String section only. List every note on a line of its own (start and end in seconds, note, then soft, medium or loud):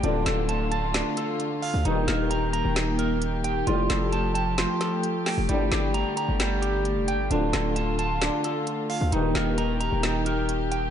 0.04 1.84 D3 medium
0.04 1.84 A3 medium
0.04 1.83 F4 medium
1.85 3.65 D#3 medium
1.85 3.65 A#3 medium
1.85 7.27 G4 medium
3.67 5.47 F3 medium
3.67 9.09 A3 medium
5.49 7.29 D3 medium
7.31 9.11 D3 medium
7.31 9.11 F4 medium
9.12 10.90 D#3 medium
9.12 10.90 A#3 medium
9.12 10.90 G4 medium